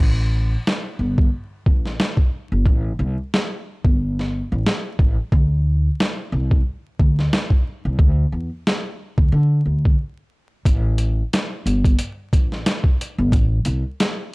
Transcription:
0.00 A1
0.67 snare
0.99 G1
1.18 kick
1.66 A1, kick
1.86 snare
2.00 snare
2.17 kick
2.52 G1
2.66 kick
2.99 C2
3.34 snare
3.85 G1, kick
4.19 snare
4.52 A1
4.66 snare
4.99 A1, kick
5.32 D2, kick
6.00 snare
6.32 C2
6.51 kick
6.99 D2, kick
7.19 snare
7.33 snare
7.50 kick
7.85 C2
7.99 D2, kick
8.32 E2
8.67 snare
9.18 D2, kick
9.32 D3
9.66 D2
9.85 kick
10.65 A1, kick, closed hi-hat
10.98 closed hi-hat
11.33 snare, closed hi-hat
11.66 G1, closed hi-hat
11.84 kick, closed hi-hat
11.99 closed hi-hat
12.33 A1, kick, closed hi-hat
12.52 snare
12.66 snare, closed hi-hat
12.84 kick
13.01 closed hi-hat
13.18 G1
13.32 A1, kick, closed hi-hat
13.65 C2, closed hi-hat
14.00 snare, closed hi-hat

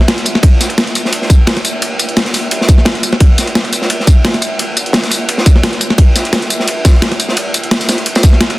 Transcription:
0.01 snare
0.08 snare, closed hi-hat, ride
0.18 closed hi-hat
0.25 closed hi-hat, ride, tambourine
0.35 snare
0.43 kick, closed hi-hat, ride
0.60 snare, closed hi-hat, ride, tambourine
0.69 closed hi-hat, ride
0.78 snare, closed hi-hat, ride
0.87 closed hi-hat, ride
0.95 closed hi-hat, ride, tambourine
1.05 snare
1.13 closed hi-hat, ride
1.22 snare
1.30 kick, closed hi-hat, ride, tambourine
1.47 snare, closed hi-hat, ride
1.57 snare, closed hi-hat
1.65 closed hi-hat, ride, tambourine
1.82 closed hi-hat, ride
1.99 closed hi-hat, ride, tambourine
2.09 closed hi-hat
2.16 snare, closed hi-hat, ride
2.26 snare, closed hi-hat
2.34 open hi-hat, ride, tambourine
2.51 closed hi-hat, ride
2.61 snare
2.69 kick, closed hi-hat, ride, tambourine
2.78 snare
2.85 snare, closed hi-hat, ride
2.95 closed hi-hat, ride
3.03 closed hi-hat, ride, tambourine
3.13 snare
3.20 kick, closed hi-hat, ride
3.38 snare, closed hi-hat, ride, tambourine
3.47 closed hi-hat, ride
3.55 snare, closed hi-hat, ride
3.65 closed hi-hat, ride
3.73 closed hi-hat, ride, tambourine
3.82 snare
3.90 closed hi-hat, ride
4.00 snare
4.07 kick, closed hi-hat, ride, tambourine
4.25 snare, closed hi-hat, ride
4.34 snare, closed hi-hat
4.42 closed hi-hat, ride, tambourine
4.59 closed hi-hat, ride
4.77 closed hi-hat, ride, tambourine
4.86 closed hi-hat
4.93 snare, closed hi-hat, ride
5.04 snare, closed hi-hat
5.10 open hi-hat, ride, tambourine
5.29 closed hi-hat, ride
5.38 snare
5.46 kick, closed hi-hat, ride, tambourine
5.56 snare
5.63 snare, closed hi-hat, ride
5.73 closed hi-hat
5.81 closed hi-hat, ride, tambourine
5.90 snare
5.98 kick, closed hi-hat, ride
6.16 snare, closed hi-hat, ride, tambourine
6.25 closed hi-hat, ride
6.33 snare, closed hi-hat, ride
6.42 closed hi-hat, ride
6.50 closed hi-hat, ride, tambourine
6.60 snare
6.68 closed hi-hat, ride
6.85 kick, snare, closed hi-hat, ride, tambourine
7.02 snare, closed hi-hat, ride
7.12 snare, closed hi-hat
7.20 closed hi-hat, ride, tambourine
7.28 snare
7.37 closed hi-hat, ride
7.54 closed hi-hat, ride, tambourine
7.63 closed hi-hat
7.71 snare, closed hi-hat, ride
7.81 snare, closed hi-hat, tambourine
7.89 snare, open hi-hat, ride, tambourine
7.98 closed hi-hat
8.06 closed hi-hat, ride
8.15 snare, ride, tambourine
8.23 kick, closed hi-hat, ride, tambourine
8.33 snare
8.41 snare, closed hi-hat, ride
8.50 closed hi-hat, ride

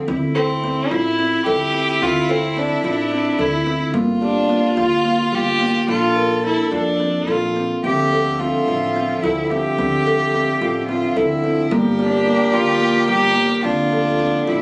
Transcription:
0.08 D2 C4 E4
0.35 C4 A4
0.64 C4
0.90 A1 E4 F4
1.19 C4
1.46 D2 G4 A4
1.74 C4
2.02 D2 C4 F4
2.29 C4 A4
2.57 C4 D4
2.84 A1 D4 F4
3.11 C4
3.39 D2 E4 A4
3.66 C4
3.93 G1 A#3 F4
4.22 D4 G4
4.49 A#3
4.77 D2 F4
5.05 A#3
5.32 G1 G4
5.61 A#3
5.88 A#1 D4 F4 A4
6.16 A#4
6.44 D4 E4
6.72 F2 D4 F4
7.00 C4
7.28 A#1 F4 A4
7.56 C4
7.83 D2 D3 F3 C4 G4 E5
8.13 A4
8.39 C4 F4
8.68 A1 F4
8.96 C4
9.23 D2 E4 A4
9.51 C4 G4
9.79 D2 C4
10.07 A4
10.34 C4
10.61 A1 F4
10.89 C4 F4
11.16 D2 E4 A4
11.44 C4
11.71 G1 G3 A#3 G4 A#4
11.99 D4 G4
12.26 A#3
12.53 D2 F4
12.81 A#3
13.08 G1 G4
13.36 A#3
13.63 D2 D3 C4 D4 F4
13.92 A4
14.20 C4
14.47 A1 E4 F4

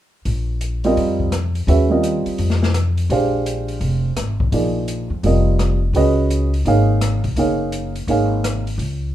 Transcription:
0.25 A#1, open hi-hat
0.61 closed hi-hat
0.84 G3 C4 F4 A#4 D#5, open hi-hat
0.97 F2, open hi-hat
1.20 kick
1.32 cross-stick, closed hi-hat
1.55 open hi-hat
1.67 D#2 G#3 C#4 F#4 B4 E5, open hi-hat
1.90 G3 C4 F4 A#4 D#5
2.04 closed hi-hat
2.26 muted upright bass stroke, open hi-hat
2.38 F2, open hi-hat
2.50 snare
2.63 snare
2.74 cross-stick, closed hi-hat
2.98 open hi-hat
3.10 A#1 G#3 D4 G4 C5 F5, open hi-hat
3.46 closed hi-hat
3.68 open hi-hat
3.81 F1, open hi-hat
4.17 G#1, cross-stick, closed hi-hat
4.40 kick
4.52 A#1 F3 A#3 D#4 G#4 D5, open hi-hat
4.88 closed hi-hat
5.10 F2
5.23 F1 G3 C4 F4 A#4 D#5, open hi-hat
5.59 cross-stick, closed hi-hat
5.93 C#2 G#3 C#4 F#4 B4 D#5, open hi-hat
6.30 closed hi-hat
6.54 open hi-hat
6.65 G#1 A#3 D#4 G#4 C#5 F5, open hi-hat
7.01 cross-stick, closed hi-hat
7.24 B1, kick, open hi-hat
7.36 F#1 A#3 D#4 G#4 C#5 F5, open hi-hat
7.72 closed hi-hat
7.96 open hi-hat
8.07 G#1 A#3 D#4 G#4 C#5 F5, open hi-hat
8.44 cross-stick, closed hi-hat
8.67 open hi-hat
8.78 C#2, open hi-hat

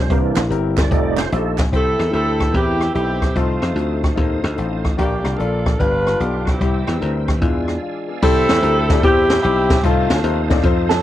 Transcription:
0.00 C5
0.09 C2 C3 E3 G3 A#3 C4 D4 E4 G4 A#4, kick, closed hi-hat
0.36 A#1, snare, clap, closed hi-hat
0.50 G1 C4 E4 G4 A#4, closed hi-hat
0.78 kick, snare, clap, closed hi-hat
0.82 D5
0.90 F1 G3 A3 D#4 F4 G4 A4, kick, closed hi-hat
1.17 C5, snare, clap, closed hi-hat
1.32 A#1 D#4 F4 G4 A4 C5, closed hi-hat
1.58 kick, snare, clap, closed hi-hat
1.72 C2 C3 E3 G3 C4 E4 G4 A4 C5 E5 G5 E6, kick, closed hi-hat
1.97 E2 C4 E4 G4 A#4, cross-stick, closed hi-hat
2.11 D2 C4 E4 G4 A4 C5, closed hi-hat
2.40 kick, cross-stick, closed hi-hat
2.52 E2 C4 E4 G4 A#4, kick, closed hi-hat
2.81 cross-stick, closed hi-hat
2.94 B1 C4 E4 G4 A4, closed hi-hat
3.22 kick, cross-stick, closed hi-hat
3.35 C2 C3 F3 A3 C4 D#4 F4 A4 F5 A5 D#6, kick, closed hi-hat
3.61 F2 C4 D#4 F4 C5, cross-stick, closed hi-hat
3.75 D2 C4 D#4 F4 A4, closed hi-hat
4.03 kick, cross-stick, closed hi-hat
4.15 D#2 C4 D#4 F4 A4, kick, closed hi-hat
4.44 D2, cross-stick, closed hi-hat
4.56 A1 C4 D#4 F4 A4, closed hi-hat
4.85 kick, cross-stick, closed hi-hat
4.97 A#1 A#2 D3 A#3 D4 F4 G4 A#4 D5 F5 D6, kick, closed hi-hat
5.23 C2 A#3 D4 F4 A#4, cross-stick, closed hi-hat
5.38 A#1 A#3 D4 F4 A4, closed hi-hat
5.66 kick, cross-stick, closed hi-hat
5.78 G1 G2 G3 B3 D4 F4 G4 B4 F5 G5, kick, closed hi-hat
6.07 cross-stick, closed hi-hat
6.19 B1 B3 D4 F4 G4 A4, closed hi-hat
6.45 C4 E4 G4, kick, cross-stick, closed hi-hat
6.59 C2 C3 E3 G3 C4 E4 G4 C5 E5 E6, kick, closed hi-hat
6.87 E2 G3 C4 E4 G4, cross-stick, closed hi-hat
7.01 D2 G3 C4 E4 A#4, closed hi-hat
7.28 kick, cross-stick, closed hi-hat
7.41 E2 E3 G#3 D4 E4 F4 D5 F5 G#5, kick, closed hi-hat
7.68 cross-stick, closed hi-hat
7.82 G#4 F5
8.08 B3 G#4
8.22 C2 C3 G3 C4 E4 G4 A4 C5 E5 G5 E6, kick, crash
8.49 E2, snare, closed hi-hat
8.62 D2 G3 C4 E4 G4 A#4, closed hi-hat
8.89 G3 C4 E4 G4 D5, kick, snare, closed hi-hat
9.03 E2 G3 C4 E4 G4 C5, kick, closed hi-hat
9.30 snare, closed hi-hat
9.43 B1 G3 C4 E4 G4 C5, closed hi-hat
9.70 kick, snare, closed hi-hat
9.82 C2 C3 A3 C4 D#4 F4 A4 C5 F5 A5 D#6, kick, closed hi-hat
10.10 D2, snare, closed hi-hat
10.24 D#2 C4 D#4 F4 A4 C5, closed hi-hat
10.50 C4 D#4 F4 A4 D5, kick, snare, closed hi-hat
10.63 F2 C4 D#4 F4 A4 C5, kick, closed hi-hat
10.89 A4, snare, closed hi-hat

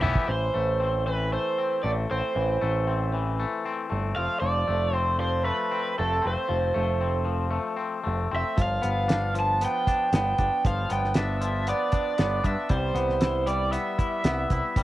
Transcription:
Already playing: B1 E3 G3 A3 E4
0.02 E3 B3 E4 G4 E5, mid tom
0.15 kick
0.28 A1 E3 C5
0.54 A1 A3
0.80 C4
1.07 E3 B4
1.32 A3 C5
1.58 C4
1.83 A1 A3 D5
2.11 A1 C4 C5
2.36 A1 E3
2.61 A1 A3
2.87 C4
3.14 E3
3.40 A3
3.66 C4
3.90 G1 A3
4.16 F1 F3 F5
4.40 F1 F3 D5
4.68 F1 A3
4.93 C4 C5
5.19 F3 C5
5.44 A3 B4
5.71 C4
5.98 F1 A3 A4
6.22 F1 C4
6.27 C5
6.48 F1 F3
6.74 F1 A3
7.01 C4
7.25 F3
7.51 A3
7.77 C4
8.04 F1 A3
8.31 F1 C4
8.36 E5
8.57 G1 F3, kick, closed hi-hat
8.62 F5
8.82 G1 B3, closed hi-hat
9.08 D4, snare, closed hi-hat
9.35 F3, closed hi-hat
9.40 A5
9.61 B3 G5, closed hi-hat
9.87 D4, kick, closed hi-hat
10.12 G1 B3 G5, snare, closed hi-hat
10.38 G1 D4, kick, closed hi-hat
10.65 G1 F3 F5, kick, closed hi-hat
10.90 G1 B3 G5, closed hi-hat
11.04 snare
11.14 D4 E5, snare, closed hi-hat
11.41 F3, closed hi-hat
11.67 B3 D5, closed hi-hat
11.92 D4, kick, closed hi-hat
12.18 G1 B3, snare, closed hi-hat
12.44 G2 D4 E5, kick, closed hi-hat
12.69 C2 G3 C5, kick, closed hi-hat
12.94 C2 B3, closed hi-hat
13.09 snare
13.21 E4, snare, closed hi-hat
13.47 G3 D5, closed hi-hat
13.72 B3 E5, closed hi-hat
13.99 E4, kick, closed hi-hat
14.24 C2 B3, snare, closed hi-hat
14.50 C2 E4, kick, closed hi-hat
14.76 C2 G3, kick, closed hi-hat

